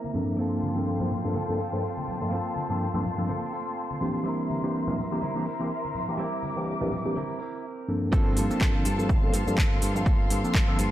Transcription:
Already playing: A#3 C4 E4 A#4 E5 A#5
0.04 tambourine, high conga
0.13 G2 F3 A#3 C4 D4 A4, tambourine, low conga
0.27 tambourine
0.37 A#3 C4 F4 F5 G5 A5 C6, tambourine
0.41 A4
0.52 tambourine
0.62 tambourine, high conga
0.76 G2 F3 A#3 C4 D4 A4, tambourine
0.86 tambourine
1.00 G2 F3 A#3 C4 D4 C5, low conga
1.10 tambourine, low conga
1.24 G2 F3 A#3 C4 D4 A4, tambourine
1.34 A#3 C4 F4 A4, tambourine, high conga
1.48 G2 F3 A#3 C4 D4 A4, tambourine
1.59 C4 F4 A4, tambourine
1.73 G2 F3 A#3 C4 D4 A4, tambourine
1.83 tambourine
1.97 high conga
2.08 tambourine, low conga
2.21 G2 F3 A#3 C4 D4 A4, tambourine
2.31 A#3 C4 F4, tambourine
2.35 A4
2.45 tambourine
2.56 tambourine, high conga
2.69 G2 F3 A#3 C4 D4 A4, tambourine
2.80 tambourine
2.94 G2 F3 A#3 C4 D4 A4, low conga
3.05 tambourine, low conga
3.18 G2 F3 A#3 C4 D4 A4, tambourine
3.28 A#3 C4 F4 A4, tambourine, high conga
3.43 tambourine
3.52 C4 F4 A4, tambourine
3.67 tambourine
3.77 tambourine
3.91 high conga
4.00 E3 A#3 C4 D4 G4, tambourine, low conga
4.15 tambourine
4.24 G3 C4 E4 A#4 E5, tambourine
4.29 A#4
4.39 tambourine
4.49 tambourine, high conga
4.63 E3 A#3 C4 D4 G4, tambourine
4.75 tambourine
4.87 E3 A#3 C4 D4 A#4, low conga
4.98 tambourine, low conga
5.11 E3 A#3 C4 D4 G4, tambourine
5.21 G3 C4 E4 A#4, tambourine, high conga
5.35 E3 A#3 C4 D4 G4, tambourine
5.46 C4 E4 A#4, tambourine
5.59 E3 A#3 C4 D4 G4
5.71 tambourine
5.85 high conga
5.95 tambourine, low conga
6.08 E3 A#3 C4 D4 G4, tambourine
6.18 G3 C4 E4 D6, tambourine
6.22 A#4
6.32 tambourine
6.43 tambourine, high conga
6.56 E3 A#3 C4 D4 G4, tambourine
6.67 tambourine
6.80 E3 A#3 C4 D4 G4, tambourine, low conga
6.92 tambourine, low conga
7.05 E3 A#3 C4 D4 G4, tambourine
7.15 G3 C4 E4 A#4, tambourine, high conga
7.29 tambourine
7.39 C4 E4 A#4, tambourine
7.54 tambourine
7.88 G2 F3 A#3 C4 D4 A4
8.12 G1 F3 A#3 C4 D4 F4 A4 F5 A5 C6, kick, shaker
8.36 G2 A#3 C4 F4 A4, open hi-hat, shaker
8.50 F3 A#3 C4 D4 A4, muted fingered electric bass stroke, shaker
8.60 G1 A#3 C4 F4 A4, kick, clap, shaker
8.74 F3 A#3 C4 D4 F4 A4 C5
8.84 G2 A#3 C4 F4 A4, open hi-hat, shaker
8.98 F3 A#3 C4 D4 F4 A4, shaker
9.09 G1, kick, shaker
9.23 F3 A#3 C4 D4 A4
9.33 G2 A#3 C4 F4 A4, open hi-hat, shaker
9.47 G2 F3 A#3 C4 D4 A4, shaker
9.57 G1 A#3 C4 F4 A4, kick, clap, shaker
9.81 G2 A#3 C4 F4 A4, open hi-hat, shaker
9.95 F3 A#3 C4 D4 F4 A4, shaker
10.05 G1 A#3 C4 F4 A4, kick, shaker
10.29 G2 A#3 C4 F4 A4, open hi-hat, shaker
10.44 F3 A#3 C4 D4 A4, muted fingered electric bass stroke, shaker
10.54 G1 A#3 C4 F4 A4, kick, clap, shaker
10.67 F3 A#3 C4 D4 F4 A4
10.78 G2 A#3 C4 F4 A4, open hi-hat, shaker

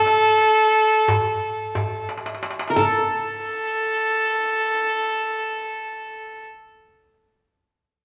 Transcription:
Already playing: G4 A4
0.06 darbuka tek
0.40 darbuka ka
1.08 darbuka dum
1.42 darbuka ka
1.75 darbuka dum
2.09 darbuka tek
2.17 darbuka ka
2.26 darbuka tek
2.35 darbuka ka
2.43 darbuka tek
2.50 darbuka ka
2.59 darbuka tek
2.68 A#4, darbuka ka
2.75 A4, darbuka dum

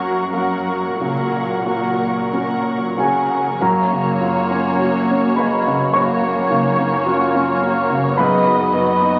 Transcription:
Already playing: F#2 F#3 A#3 C#4 F#4 A#4 F#5 C#6
0.33 F#3 A#3 F#4 A#4 F#5 C#6
0.99 A#2 C#3 F#3 A#4 F#5 C#6
1.66 F#3 A#3 F#4 A#4 F#5 C#6
2.31 F#3 C#4 F#4 A#4 F#5 C#6
2.96 C#3 F#3 A#3 F#4 A#4 F#5 G#5 C#6
3.01 G#4
3.58 F#1 F#2 A#3 C#4 F#4 A#4 C#5 A#5
3.93 C#3
4.19 A#3 F4
4.51 C#4
4.79 F#3 F#4
5.11 C#4
5.35 G#3 A#3 B4 B5
5.67 C#3
5.92 F#2 A#3 C#4 F#4 C#5 C#6
6.21 A#3
6.50 C#3 D#4
6.80 C#4
7.06 A#3 F4 F#4 F5
7.35 C#4
7.61 A#3 F#4
7.90 C#3
8.17 F#1 F#2 B3 D#4 F#4 G#4 B4 D#5 B5
8.22 D#5
8.47 F#3
8.74 B3 F#4
9.02 D#4

